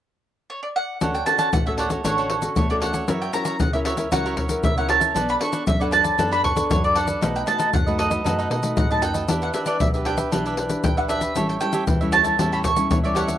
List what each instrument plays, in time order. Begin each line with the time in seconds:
0.50 mandolin C#5
0.63 mandolin D5
0.76 mandolin F#5
1.01 analog synth bass D2, nylon-string guitar D3 C#4 F#4 A4, cavaquinho D4 A4 C#5 F#5, pandeiro, shaker, surdo
1.14 mandolin G5, pandeiro, shaker
1.26 nylon-string guitar C#4 F#4 A4, cavaquinho D4 A4 C#5 F#5, mandolin A5, pandeiro, shaker
1.38 cavaquinho D4 A4 C#5 F#5, mandolin A5, pandeiro, shaker
1.53 analog synth bass A1, nylon-string guitar A3, mandolin F#5, pandeiro, shaker, surdo
1.66 nylon-string guitar C#4 F#4 A4, cavaquinho A4 C#5 F#5, mandolin E5, pandeiro, shaker
1.77 cavaquinho D4 A4 C#5 F#5, mandolin D5, pandeiro
1.90 nylon-string guitar C#4 F#4 A4, cavaquinho A4 C#5 F#5, pandeiro, shaker
2.04 analog synth bass A1, nylon-string guitar D3 C#4 F#4 A4, cavaquinho D4 A4 C#5 F#5, mandolin C#5, pandeiro, shaker, surdo
2.18 cavaquinho D4 A4 C#5 F#5, pandeiro, shaker
2.29 cavaquinho D4 A4 C#5 F#5, pandeiro
2.42 nylon-string guitar C#4 F#4 A4, pandeiro, shaker
2.56 analog synth bass E2, nylon-string guitar A3, mandolin C#5, pandeiro, shaker, surdo
2.69 nylon-string guitar C#4 F#4 A4, cavaquinho A4 C#5 F#5, mandolin D5, pandeiro, shaker
2.81 cavaquinho D4 A4 C#5 F#5, mandolin F#5, pandeiro
2.93 cavaquinho A4 C#5 F#5, pandeiro, shaker
3.08 analog synth bass F#2, nylon-string guitar F#3 C#4 E4 A#4, cavaquinho F#4 A#4 C#5 E5, pandeiro, shaker, surdo
3.22 mandolin G5, pandeiro, shaker
3.33 nylon-string guitar C#4 E4 A#4, cavaquinho F#4 A#4 C#5 E5, mandolin A#5, pandeiro, shaker
3.45 cavaquinho F#4 A#4 C#5 E5, mandolin A#5, pandeiro, shaker
3.60 analog synth bass C#2, nylon-string guitar C#3, mandolin F#5, pandeiro, shaker, surdo
3.73 nylon-string guitar C#4 E4 A#4, cavaquinho A#4 C#5 E5, mandolin E5, pandeiro, shaker
3.85 cavaquinho F#4 A#4 C#5 E5, mandolin E5, pandeiro
3.97 nylon-string guitar C#4 E4 A#4, cavaquinho A#4 C#5 E5, pandeiro, shaker
4.12 analog synth bass C#2, nylon-string guitar F#3 C#4 E4 A#4, cavaquinho F#4 A#4 C#5 E5, mandolin F#5, pandeiro, shaker, surdo
4.25 cavaquinho F#4 A#4 C#5 E5, pandeiro, shaker
4.36 cavaquinho F#4 A#4 C#5 E5, pandeiro, surdo
4.49 nylon-string guitar C#4 E4 A#4, pandeiro, shaker
4.63 analog synth bass C#2, nylon-string guitar C#3, mandolin E5, pandeiro, shaker, surdo
4.77 nylon-string guitar C#4 E4 A#4, cavaquinho A#4 C#5 E5, mandolin F#5, pandeiro, shaker
4.88 cavaquinho F#4 A#4 C#5 E5, mandolin A5, pandeiro
5.00 cavaquinho A#4 C#5 E5, pandeiro, shaker
5.14 analog synth bass B1, nylon-string guitar B3 D4 A4 C#5, cavaquinho D4 A4 B4 D5, pandeiro, shaker, surdo
5.29 mandolin B5, pandeiro, shaker
5.39 cavaquinho D4 A4 B4 D5, nylon-string guitar D4 A4 C#5, mandolin C#6, pandeiro
5.52 cavaquinho D4 A4 B4 D5, pandeiro, shaker
5.67 analog synth bass F#2, nylon-string guitar F#3, mandolin E5, pandeiro, shaker, surdo
5.80 nylon-string guitar D4 A4 C#5, cavaquinho A4 B4 D5, mandolin F#5, pandeiro, shaker
5.91 cavaquinho D4 A4 B4 D5, mandolin A5, pandeiro, shaker
6.04 cavaquinho A4 B4 D5, pandeiro, shaker
6.18 analog synth bass F#2, nylon-string guitar B3 D4 A4 C#5, cavaquinho D4 A4 B4 D5, pandeiro, shaker, surdo
6.31 cavaquinho D4 A4 B4 D5, mandolin B5, pandeiro, shaker
6.43 cavaquinho D4 A4 B4 D5, mandolin C#6, pandeiro, surdo
6.56 nylon-string guitar D4 A4 C#5, pandeiro, shaker
6.70 analog synth bass F#2, nylon-string guitar F#3, mandolin C#5, pandeiro, shaker, surdo
6.83 nylon-string guitar D4 A4 C#5, cavaquinho A4 B4 D5, mandolin D5, pandeiro, shaker
6.95 cavaquinho D4 A4 B4 D5, mandolin F#5, pandeiro
7.07 cavaquinho A4 B4 D5, pandeiro, shaker
7.21 analog synth bass B1, nylon-string guitar B2 A3 D#4 F#4, cavaquinho D#4 A4 B4 D#5, pandeiro, shaker, surdo
7.36 mandolin G5, pandeiro, shaker
7.46 nylon-string guitar A3 D#4 F#4, cavaquinho D#4 A4 B4 D#5, mandolin A5, pandeiro, shaker
7.58 cavaquinho D#4 A4 B4 D#5, pandeiro, shaker
7.73 analog synth bass F#2, nylon-string guitar F#3, mandolin F#5, pandeiro, shaker, surdo
7.86 nylon-string guitar A3 D#4 F#4, cavaquinho A4 B4 D#5, pandeiro, shaker
7.98 cavaquinho D#4 A4 B4 D#5, mandolin D#5, pandeiro
8.10 cavaquinho A4 B4 D#5, pandeiro, shaker
8.24 analog synth bass F#2, nylon-string guitar B2 A3 D#4 F#4, cavaquinho D#4 A4 B4 D#5, pandeiro, shaker, surdo
8.39 cavaquinho D#4 A4 B4 D#5, pandeiro, shaker
8.50 analog synth bass B2, cavaquinho D#4 A4 B4 D#5, pandeiro
8.63 nylon-string guitar A3 D#4 F#4, pandeiro, shaker
8.77 analog synth bass A2, nylon-string guitar F#3, mandolin F#5, pandeiro, shaker, surdo
8.90 nylon-string guitar A3 D#4 F#4, cavaquinho A4 B4 D#5, mandolin A5, pandeiro, shaker
9.01 analog synth bass F#2, cavaquinho D#4 A4 B4 D#5, mandolin G5, pandeiro, shaker
9.14 cavaquinho A4 B4 D#5, pandeiro, shaker
9.28 analog synth bass E2, nylon-string guitar E3 D4 G4 B4, cavaquinho D4 G4 B4 E5, pandeiro, shaker, surdo
9.42 mandolin F#5, pandeiro, shaker
9.54 cavaquinho D4 G4 B4 E5, nylon-string guitar D4 G4 B4, mandolin E5, pandeiro, shaker
9.66 cavaquinho D4 G4 B4 E5, mandolin D5, pandeiro, shaker
9.80 analog synth bass B1, nylon-string guitar B2, mandolin E5, pandeiro, shaker, surdo
9.94 nylon-string guitar D4 G4 B4, cavaquinho G4 B4 E5, pandeiro, shaker
10.05 cavaquinho D4 G4 B4 E5, mandolin G5, pandeiro
10.17 cavaquinho G4 B4 E5, pandeiro, shaker
10.32 analog synth bass B1, nylon-string guitar E3 D4 G4 B4, cavaquinho D4 G4 B4 E5, pandeiro, shaker, surdo
10.45 cavaquinho D4 G4 B4 E5, pandeiro, shaker
10.57 cavaquinho D4 G4 B4 E5, pandeiro
10.70 nylon-string guitar D4 G4 B4, pandeiro, shaker
10.84 analog synth bass A#1, mandolin G5, pandeiro, shaker, surdo
10.97 nylon-string guitar D4 G4 B4, cavaquinho G4 B4 E5, mandolin F#5, pandeiro, shaker
11.08 cavaquinho D4 G4 B4 E5, mandolin E5, pandeiro, shaker
11.21 cavaquinho G4 B4 E5, pandeiro, shaker
11.35 analog synth bass A1, nylon-string guitar A2 G3 C#4 E4, cavaquinho G4 A4 C#5 E5, pandeiro, shaker, surdo
11.49 mandolin G5, pandeiro, shaker
11.60 nylon-string guitar G3 C#4 E4, cavaquinho G4 A4 C#5 E5, mandolin G5, pandeiro, shaker
11.73 cavaquinho G4 A4 C#5 E5, pandeiro, shaker
11.87 analog synth bass E2, nylon-string guitar E3, pandeiro, shaker, surdo
12.01 nylon-string guitar G3 C#4 E4, cavaquinho A4 C#5 E5, pandeiro, shaker
12.12 cavaquinho G4 A4 C#5 E5, mandolin A5, pandeiro, shaker
12.24 nylon-string guitar G3 C#4 E4, cavaquinho A4 C#5 E5, pandeiro, shaker
12.39 analog synth bass E2, nylon-string guitar A2 G3 C#4 E4, cavaquinho G4 A4 C#5 E5, pandeiro, shaker, surdo
12.52 cavaquinho G4 A4 C#5 E5, mandolin B5, pandeiro, shaker
12.64 cavaquinho A4 C#5 E5, mandolin C#6, pandeiro, shaker, surdo
12.76 nylon-string guitar G3 C#4 E4, pandeiro, shaker
12.91 analog synth bass E2, nylon-string guitar E3, mandolin C#5, pandeiro, shaker, surdo
13.03 nylon-string guitar G3 C#4 E4, cavaquinho A4 C#5 E5, mandolin D5, pandeiro, shaker
13.15 cavaquinho G4 A4 C#5 E5, mandolin F#5, pandeiro, shaker
13.27 cavaquinho A4 C#5 E5, pandeiro, shaker